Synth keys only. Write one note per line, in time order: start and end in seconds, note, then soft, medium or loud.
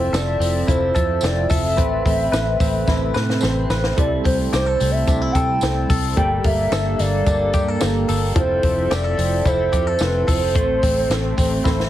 0.00 0.12 E4 loud
0.00 0.12 F4 medium
0.00 0.13 A4 loud
0.12 0.63 E4 medium
0.12 0.63 F4 medium
0.12 0.63 A4 medium
0.67 1.18 E4 medium
0.67 1.18 F4 medium
0.67 1.18 A4 medium
1.22 1.72 E4 medium
1.22 1.73 F4 medium
1.22 1.73 A4 medium
1.76 2.27 C4 loud
1.76 2.27 A4 medium
1.76 2.27 B4 loud
2.31 2.82 C4 medium
2.31 2.82 A4 medium
2.31 2.82 B4 loud
2.87 3.37 C4 medium
2.87 3.37 A4 medium
2.87 3.38 B4 medium
3.41 3.92 C4 medium
3.41 3.92 A4 medium
3.41 3.92 C5 loud
3.96 4.47 C4 loud
3.96 4.47 E4 medium
3.96 4.47 A4 loud
4.51 5.02 C4 medium
4.51 5.02 E4 medium
4.51 5.02 A4 medium
5.07 5.57 C4 medium
5.07 5.57 E4 medium
5.07 5.57 A4 medium
5.61 6.12 C4 medium
5.61 6.12 E4 medium
5.61 6.12 A4 medium
6.16 6.67 A#3 medium
6.16 6.67 G4 medium
6.16 6.67 A4 loud
6.71 7.21 A#3 medium
6.71 7.21 G4 medium
6.71 7.22 A4 medium
7.26 7.76 A#3 medium
7.26 7.76 G4 medium
7.26 7.76 A4 medium
7.80 8.31 A#3 medium
7.80 8.31 G4 medium
7.80 8.31 A4 loud
8.35 8.86 E4 loud
8.35 8.86 F4 medium
8.35 8.86 A4 loud
8.90 9.40 E4 medium
8.90 9.41 F4 medium
8.90 9.41 A4 medium
9.45 9.95 E4 medium
9.45 9.95 F4 medium
9.45 9.95 A4 medium
10.00 10.50 E4 medium
10.00 10.50 F4 medium
10.00 10.50 A4 medium
10.54 11.05 C4 loud
10.54 11.05 A4 medium
10.54 11.06 C5 loud
11.10 11.61 C4 medium
11.10 11.61 A4 medium
11.10 11.61 C5 medium
11.65 11.89 C4 medium
11.65 11.89 A4 medium
11.65 11.89 C5 loud